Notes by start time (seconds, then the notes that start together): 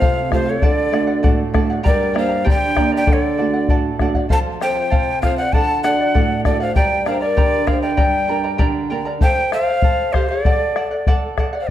Already playing: A3 C4 F4 C5 F5
0.01 C3 A4 C5 F5, bombo low
0.30 A3 C4 F4 G4 A4 C5 F5, bombo rim, bombo low
0.46 A4 C5 F5
0.50 C#5
0.62 D3 A4 D5 F#5, bombo low
0.91 A3 D4 F#4 A4 D5 F#5, bombo rim
1.07 D5 F#5
1.23 A2 A4 D5 F#5, bombo low
1.54 A3 D4 F#4 A4 D5 F#5, bombo rim, bombo low
1.70 D5 F#5
1.83 G2 G4 A#4 D5 G5 A#5, bombo low
2.13 A#3 D4 G4 A#4 C5 D5 G5 A#5, bombo rim
2.18 F5
2.29 A#4 D5 A#5
2.44 D3 G4 A#4 D5 G5 A#5, bombo low
2.50 G5
2.76 A#3 D4 G4 A#4 D5 G5 A#5, bombo rim, bombo low
2.92 A#4 D5 A#5
2.96 D5 G5
3.07 D3 A4 D5 F#5, bombo low
3.12 A4 D5
3.37 A3 D4 F#4 A4 D5 F#5
3.54 D5 F#5
3.68 A2 A4 D5 F#5, bombo low
3.99 A3 D4 F#4 A4 D5 F#5, bombo rim, bombo low
4.14 D5 F#5, bombo low
4.29 F3 A4 C5 F5 A5, bombo low
4.61 C4 F4 A4 C5 F5 G5, bombo rim
4.75 C5 F5
4.90 C3 A4 C5 F5, bombo low
5.22 C4 F4 A4 C5 F5, bombo rim, bombo low
5.37 C5 D5 F5 F#5
5.53 D3 A4 D5 F#5 A5, bombo low
5.83 D4 F#4 A4 D5 F#5, bombo rim
5.99 D5 F#5
6.14 A2 A4 D5 F#5, bombo low
6.44 D4 F#4 A4 D5 F#5, bombo rim, bombo low
6.60 C5 D5 F5 F#5
6.75 G2 G4 A#4 D5 G5 A#5, bombo low
7.06 D4 G4 A#4 C5 D5 F5 G5 A#5, bombo rim
7.21 A#4 D5 A#5
7.37 D3 G4 A#4 D5 G5 A#5, bombo low
7.67 D4 G4 A#4 C5 D5 F5 G5 A#5, bombo rim, bombo low
7.82 A#4 D5 G5 A#5
7.97 G2 G4 A#4 D5 G5 A#5, bombo low
8.28 D4 G4 A#4 D5 G5 A#5
8.44 A#4 D5 A#5
8.58 D3 G4 A#4 D5 G5 A#5, bombo low
8.90 D4 G4 A#4 D5 G5 A#5
9.05 A#4 D5 A#5
9.21 A4 C5 F5 G5, bombo low
9.52 A4 C5 F5, bombo rim
9.56 C5
9.69 C5 F5
9.82 A4 C5 F5, bombo low
10.13 G4 A4 C5 F5, bombo rim, bombo low
10.29 A4 C5 D5 F5
10.45 A4 D5 F#5, bombo low
10.76 A4 D5 F#5, bombo rim
10.91 D5 F#5
11.07 A4 D5 F#5, bombo low
11.38 A4 D5 F#5, bombo rim, bombo low
11.53 D5 F#5
11.61 C5 F5
11.67 D5